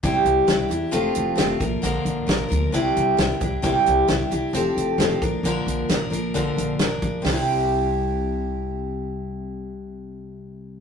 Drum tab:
HH |xxxxxxxx|xxxxxxxx|xxxxxxxx|xxxxxxxx|
SD |--o---o-|--o---o-|--o---o-|--o---o-|
BD |o------o|-------o|o------o|-------o|

HH |o-------|--------|
SD |o-------|--------|
BD |--------|--------|